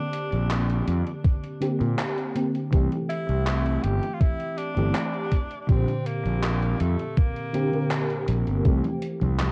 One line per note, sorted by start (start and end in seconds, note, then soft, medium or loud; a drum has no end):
0.00 1.56 D3 medium
0.00 1.57 A#3 medium
0.00 1.57 C4 medium
0.00 0.84 D4 loud
0.00 1.58 G4 medium
0.13 closed hi-hat loud
0.32 0.81 A#1 medium
0.32 closed hi-hat soft
0.51 clap loud
0.51 closed hi-hat medium
0.70 closed hi-hat soft
0.88 1.02 F2 medium
0.88 closed hi-hat medium
1.07 closed hi-hat soft
1.25 kick loud
1.25 closed hi-hat medium
1.44 closed hi-hat soft
1.61 2.31 D3 medium
1.61 2.31 A#3 medium
1.61 2.31 C4 medium
1.61 2.32 G4 loud
1.61 closed hi-hat medium
1.81 1.94 A#2 medium
1.81 closed hi-hat soft
1.99 clap loud
1.99 closed hi-hat medium
2.18 closed hi-hat soft
2.35 2.68 D3 medium
2.35 2.68 A#3 medium
2.35 2.69 C4 medium
2.35 2.69 G4 medium
2.35 closed hi-hat loud
2.55 closed hi-hat soft
2.71 2.87 C2 medium
2.71 4.72 E3 medium
2.71 4.72 A3 medium
2.71 4.73 C4 medium
2.71 4.73 G4 medium
2.71 kick loud
2.71 closed hi-hat medium
2.92 closed hi-hat soft
3.10 3.85 E4 loud
3.10 closed hi-hat medium
3.29 3.77 C2 medium
3.29 closed hi-hat soft
3.47 clap loud
3.47 closed hi-hat medium
3.66 closed hi-hat soft
3.83 3.99 G1 medium
3.83 4.15 G4 loud
3.83 closed hi-hat loud
4.03 closed hi-hat soft
4.14 4.23 F4 medium
4.21 4.59 E4 loud
4.21 kick loud
4.21 closed hi-hat medium
4.40 closed hi-hat soft
4.58 5.61 D4 loud
4.58 closed hi-hat medium
4.76 4.91 G1 medium
4.76 5.29 E3 medium
4.76 5.30 A3 medium
4.76 5.30 C4 medium
4.76 5.30 G4 loud
4.76 closed hi-hat soft
4.95 clap loud
4.95 closed hi-hat medium
5.14 closed hi-hat soft
5.32 kick medium
5.32 closed hi-hat medium
5.51 closed hi-hat soft
5.62 5.70 D4 medium
5.67 5.84 A#1 medium
5.67 7.49 A#2 medium
5.67 7.49 D3 medium
5.67 6.08 C4 loud
5.67 7.50 C4 medium
5.67 7.50 G4 medium
5.67 kick loud
5.67 closed hi-hat medium
5.88 closed hi-hat soft
6.06 6.82 A#3 loud
6.06 closed hi-hat medium
6.25 6.73 A#1 medium
6.25 closed hi-hat soft
6.43 clap loud
6.43 closed hi-hat medium
6.62 closed hi-hat soft
6.80 6.95 F2 medium
6.80 7.19 A3 medium
6.80 closed hi-hat medium
6.99 closed hi-hat soft
7.17 8.28 A#3 loud
7.17 kick loud
7.17 closed hi-hat medium
7.36 closed hi-hat soft
7.53 7.68 D3 medium
7.53 7.69 A#3 medium
7.53 7.69 C4 medium
7.53 7.69 G4 loud
7.53 closed hi-hat medium
7.72 8.60 D3 medium
7.72 8.61 A#3 medium
7.72 8.61 C4 medium
7.72 8.62 A#4 medium
7.72 closed hi-hat soft
7.91 clap loud
7.91 closed hi-hat medium
8.10 closed hi-hat soft
8.28 8.43 A#1 loud
8.28 closed hi-hat medium
8.47 8.61 G1 loud
8.47 closed hi-hat soft
8.64 8.80 C2 medium
8.64 9.52 E3 medium
8.64 9.52 A3 medium
8.64 9.52 C4 medium
8.64 9.52 G4 medium
8.64 kick loud
8.64 closed hi-hat medium
8.64 high conga soft
8.84 closed hi-hat soft
8.84 high conga soft
9.02 closed hi-hat medium
9.21 9.52 C2 medium
9.21 closed hi-hat soft
9.21 high conga medium
9.39 clap loud
9.39 closed hi-hat medium
9.39 high conga soft